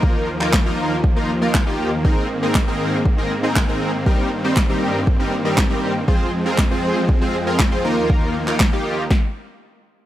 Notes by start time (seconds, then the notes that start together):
Already playing: D#2 D#3 F3 A#3 D#4 F4 A#4
0.03 kick
0.41 A#3 D#4 F4 A#4, clap
0.53 kick, snare, clap
0.66 A#3 D#4 F4 A#4
1.04 kick
1.16 A#3 D#4 F4 A#4
1.42 A#3 D#4 F4 A#4
1.54 kick, snare, clap
1.67 A#3 D#4 F4 G4
2.05 G#2 C4 D#4 G#4 A#4, kick
2.42 C4 D#4 G#4 A#4
2.55 kick, snare, clap
2.67 C4 D#4 G#4 A#4
3.06 kick
3.18 C4 D#4 G#4 A#4
3.43 C4 D#4 G#4 A#4
3.56 kick, snare, clap
3.68 C4 D#4 G#4 A#4
4.06 G2 G3 C4 D#4 G4 A#4, kick
4.44 G3 C4 D#4 G4 C5
4.57 kick, snare, clap
4.69 G3 C4 D#4 G4 A#4
5.07 kick
5.19 G3 C4 D#4 G4 A#4
5.45 G3 C4 D#4 G4 A#4
5.58 kick, snare, clap
5.70 G3 C4 D#4 G4 A#4
6.08 F2 F3 G#3 C4 F4 G#4 C5, kick
6.46 C4 F4 G#4 A#4
6.58 kick, snare, clap
6.71 C4 F4 G#4 C5
7.09 kick
7.21 C4 F4 G#4 C5
7.47 C4 F4 G#4 A#4
7.59 kick, snare, clap
7.72 C4 F4 G#4 C5
7.84 D#2 D#3 A#3 D#4 F4 A#4
8.10 kick
8.47 A#3 D#4 F4 A#4, clap
8.60 kick, snare, clap
8.73 A#3 D#4 F4 G4
9.11 kick, snare